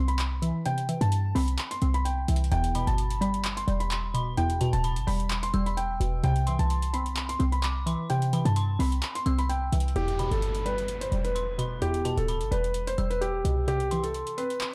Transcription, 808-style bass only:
0.00 0.52 C2 loud
1.01 1.34 G2 loud
1.35 1.58 C2 loud
1.82 2.26 C2 loud
2.28 2.51 C2 loud
2.52 2.86 E1 loud
2.87 3.65 G1 loud
3.68 4.69 E1 loud
4.73 4.98 D1 loud
4.96 5.07 G1 loud
5.07 5.52 E1 loud
5.54 5.99 E1 loud
6.00 6.23 E1 loud
6.24 6.58 C2 loud
6.59 7.37 C2 loud
7.40 7.96 C2 loud
8.45 8.78 G2 loud
8.79 9.02 C2 loud
9.26 9.71 C2 loud
9.72 9.95 C2 loud
9.96 10.30 E1 loud
10.31 11.09 G1 loud
11.12 12.13 E1 loud
12.17 12.42 D1 loud
12.41 12.51 G1 loud
12.52 12.96 E1 loud
12.98 13.43 E1 loud
13.45 14.23 C2 loud

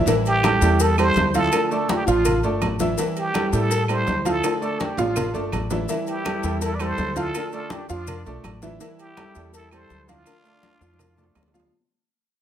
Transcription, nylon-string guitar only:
0.07 0.42 E3 medium
0.07 0.43 G3 medium
0.07 0.43 C4 medium
0.07 0.44 E4 medium
0.43 0.61 E3 medium
0.43 0.61 G3 medium
0.43 0.62 C4 medium
0.43 0.61 E4 medium
0.62 0.80 G3 medium
0.62 0.80 C4 medium
0.62 0.79 E4 medium
0.81 muted nylon-string guitar stroke medium
0.97 1.34 G3 soft
0.97 1.34 C4 soft
0.97 1.33 E4 medium
1.34 1.53 G3 medium
1.34 1.52 C4 medium
1.34 1.52 E4 medium
1.52 1.87 D3 medium
1.52 1.88 A3 medium
1.52 1.88 D4 medium
1.52 1.89 F4 medium
1.88 2.06 D3 medium
1.88 2.06 A3 medium
1.88 2.06 D4 medium
1.88 2.04 F4 medium
2.06 2.24 A3 medium
2.06 2.24 D4 medium
2.06 2.24 F4 medium
2.25 muted nylon-string guitar stroke medium
2.43 2.80 A3 soft
2.43 2.80 D4 soft
2.43 2.78 F4 medium
2.80 2.98 A3 medium
2.80 2.98 D4 medium
2.80 2.97 F4 medium
2.98 3.33 E3 medium
2.98 3.33 G3 medium
2.98 3.34 C4 medium
2.98 3.35 E4 medium
3.34 3.52 E3 medium
3.34 3.52 G3 medium
3.34 3.52 C4 medium
3.34 3.51 E4 medium
3.52 3.70 G3 medium
3.52 3.70 C4 medium
3.52 3.70 E4 medium
3.71 muted nylon-string guitar stroke medium
3.88 4.25 G3 soft
3.88 4.25 C4 medium
3.88 4.23 E4 medium
4.25 4.43 G3 medium
4.25 4.43 C4 medium
4.25 4.42 E4 medium
4.43 4.79 D3 medium
4.43 4.79 A3 medium
4.43 4.80 D4 medium
4.43 4.80 F4 medium
4.80 4.97 D3 soft
4.80 4.98 A3 medium
4.80 4.98 D4 medium
4.80 4.97 F4 medium
4.98 5.16 A3 medium
4.98 5.16 D4 medium
4.98 5.15 F4 medium
5.16 muted nylon-string guitar stroke medium
5.34 5.71 A3 soft
5.34 5.71 D4 soft
5.34 5.69 F4 medium
5.71 5.89 A3 medium
5.71 5.89 D4 medium
5.71 5.88 F4 medium
5.89 6.24 E3 medium
5.89 6.25 G3 medium
5.89 6.25 C4 medium
5.89 6.25 E4 medium
6.25 6.43 E3 medium
6.25 6.43 G3 medium
6.25 6.43 C4 medium
6.25 6.42 E4 medium
6.43 6.61 G3 medium
6.43 6.61 C4 medium
6.43 6.61 E4 medium
6.61 muted nylon-string guitar stroke medium
6.80 7.17 G3 soft
6.80 7.16 C4 soft
6.80 7.15 E4 medium
7.16 7.35 G3 medium
7.16 7.34 C4 medium
7.16 7.34 E4 medium
7.35 7.70 D3 medium
7.35 7.71 A3 medium
7.35 7.71 D4 medium
7.35 7.72 F4 medium
7.71 7.89 D3 medium
7.71 7.89 A3 medium
7.71 7.89 D4 medium
7.71 7.88 F4 medium
7.89 8.07 A3 medium
7.89 8.07 D4 medium
7.89 8.07 F4 medium
8.08 muted nylon-string guitar stroke medium
8.25 8.62 A3 soft
8.25 8.62 D4 medium
8.25 8.61 F4 medium
8.62 8.81 A3 medium
8.62 8.80 D4 medium
8.62 8.80 F4 medium
8.80 9.16 E3 medium
8.80 9.17 G3 medium
8.80 9.17 C4 medium
8.80 9.17 E4 medium
9.17 9.34 E3 medium
9.17 9.35 G3 medium
9.17 9.35 C4 medium
9.17 9.34 E4 medium
9.35 9.53 G3 medium
9.35 9.53 C4 medium
9.35 9.53 E4 medium
9.53 muted nylon-string guitar stroke medium
9.72 10.09 G3 soft
9.72 10.08 C4 soft
9.72 10.06 E4 medium
10.07 10.26 G3 medium
10.07 10.26 C4 medium
10.07 10.25 E4 medium
10.25 10.60 D3 medium
10.25 10.62 A3 medium
10.25 10.62 D4 medium
10.25 10.63 F4 medium
10.62 10.80 D3 soft
10.62 10.80 A3 medium
10.62 10.80 D4 medium
10.62 10.79 F4 medium
10.80 10.98 A3 medium
10.80 10.99 D4 medium
10.80 10.98 F4 medium
10.99 muted nylon-string guitar stroke medium
11.17 11.54 A3 soft
11.17 11.53 D4 soft
11.17 11.52 F4 medium
11.53 11.72 A3 medium
11.53 11.72 D4 medium
11.53 11.71 F4 medium

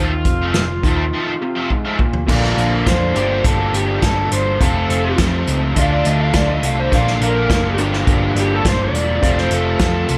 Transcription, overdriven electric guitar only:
0.00 1.67 F4 medium
2.87 3.44 C5 medium
3.46 3.74 A4 medium
3.75 4.03 G4 medium
4.02 4.31 A4 medium
4.33 4.61 C5 medium
4.61 5.17 A4 medium
5.78 5.92 F5 loud
5.92 6.06 D5 medium
6.07 6.21 D#5 medium
6.21 6.35 F5 medium
6.36 6.50 D5 medium
6.52 6.65 D#5 medium
6.65 6.79 F5 loud
6.80 6.93 C5 medium
6.94 7.22 F5 medium
7.23 7.78 A#4 medium
8.40 8.54 G4 medium
8.54 8.67 A4 medium
8.68 8.81 C5 medium
8.83 9.37 D5 medium
9.39 9.54 C5 medium
9.54 9.81 A4 medium
9.84 10.18 A4 medium

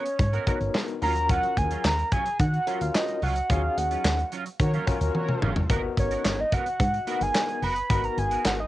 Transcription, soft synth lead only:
0.00 0.75 C#5 loud
1.03 1.28 A#5 loud
1.31 1.60 F#5 loud
1.58 1.87 G#5 loud
1.85 2.12 A#5 loud
2.12 2.38 G#5 loud
2.40 2.83 F#5 loud
2.82 2.97 F5 medium
2.95 3.23 D#5 medium
3.23 3.52 F#5 medium
3.50 3.79 F5 loud
3.78 4.32 F#5 medium
5.99 6.42 C#5 medium
6.40 6.55 D#5 medium
6.53 7.24 F#5 loud
7.22 7.65 G#5 loud
7.64 8.06 B5 loud
8.04 8.20 A#5 loud
8.19 8.48 G#5 loud
8.46 8.59 F#5 medium
8.60 8.67 D#5 medium

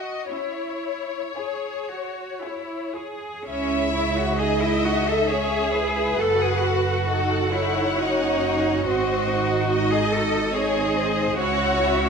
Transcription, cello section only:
0.00 0.30 F#4 soft
0.30 1.25 E4 soft
1.37 1.87 G#4 soft
1.90 2.43 F#4 soft
2.43 2.96 E4 soft
2.96 3.47 G#4 soft
3.47 3.91 C#4 medium
3.95 4.17 E4 medium
4.18 4.41 F#4 medium
4.39 4.62 G#4 medium
4.62 4.85 E4 medium
4.84 5.07 F#4 medium
5.08 5.30 A4 medium
5.30 6.18 G#4 medium
6.19 6.41 A4 medium
6.42 6.64 G#4 medium
6.63 7.52 F#4 medium
7.53 7.98 E4 medium
7.99 8.88 D#4 medium
8.88 9.91 F#4 medium
9.93 10.13 G#4 medium
10.12 10.54 A4 medium
10.53 11.39 G#4 medium
11.39 12.09 F#4 medium

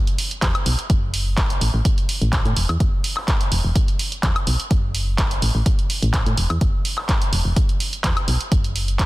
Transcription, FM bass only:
0.42 0.51 E2 medium
0.66 0.75 B1 medium
0.90 1.55 F#1 medium
1.61 1.71 A1 medium
1.74 1.82 A1 medium
2.21 2.45 A1 loud
2.45 2.53 A2 medium
2.57 2.66 E1 medium
2.69 2.77 E2 medium
2.80 2.90 F#1 loud
3.52 3.61 E1 medium
3.64 3.73 E1 medium
4.23 4.32 E2 medium
4.47 4.56 B1 medium
4.71 5.36 F#1 loud
5.42 5.51 A1 medium
5.55 5.63 A1 medium
6.02 6.26 A1 loud
6.26 6.34 A2 medium
6.37 6.47 E1 medium
6.50 6.58 E2 medium
6.61 6.71 F#1 loud
7.33 7.42 E1 medium
7.45 7.53 E1 medium
8.04 8.13 E2 medium
8.28 8.37 B1 medium
8.52 9.06 F#1 medium

